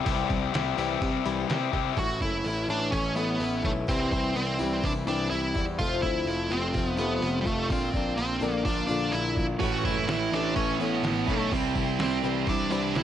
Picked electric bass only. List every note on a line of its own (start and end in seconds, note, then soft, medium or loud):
0.06 0.24 C2 medium
0.30 0.48 C2 medium
0.55 0.73 C2 medium
0.78 0.96 C2 medium
1.02 1.19 C3 medium
1.26 1.44 C2 medium
1.50 1.68 C3 medium
1.73 1.91 C3 medium
1.97 2.19 A1 medium
2.21 2.43 F#1 medium
2.44 2.67 A1 medium
2.69 2.91 A1 medium
2.93 3.37 A1 medium
3.40 3.62 A1 medium
3.64 3.86 B1 medium
3.88 4.10 C2 medium
4.12 4.34 C2 medium
4.36 4.58 C2 medium
4.61 4.82 C2 medium
4.84 5.06 C2 medium
5.07 5.29 C2 medium
5.31 5.53 C2 medium
5.56 5.81 E2 medium
5.79 6.01 F1 medium
6.03 6.25 D2 medium
6.26 6.49 F1 medium
6.51 6.73 F1 medium
6.75 7.18 F1 medium
7.22 7.44 F1 medium
7.46 7.68 F1 medium
7.70 7.92 A#1 medium
7.94 8.16 A#1 medium
8.18 8.40 A#1 medium
8.41 8.63 A#1 medium
8.65 8.87 A#1 medium
8.89 9.11 A#1 medium
9.13 9.35 A#1 medium
9.37 9.59 A#1 medium
9.60 9.83 A1 medium
9.84 10.07 F#1 medium
10.09 10.31 A1 medium
10.32 10.54 A1 medium
10.56 11.00 A1 medium
11.03 11.26 A1 medium
11.28 11.50 B1 medium
11.52 11.74 C2 medium
11.75 11.98 C2 medium
12.00 12.22 C2 medium
12.23 12.46 C2 medium
12.47 12.69 C2 medium
12.71 12.93 C2 medium
12.95 13.03 C2 medium